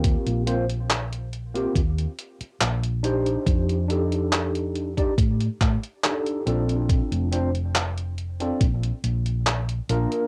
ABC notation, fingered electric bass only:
X:1
M:4/4
L:1/16
Q:1/4=70
K:Eblyd
V:1 name="Fingered electric bass" clef=bass
z B,,,6 z E,, z3 B,,,3 z | F,,6- F,, z A,, z A,, z3 B,,,2 | z F,,,6 z B,,, z B,,,3 z B,,, z |]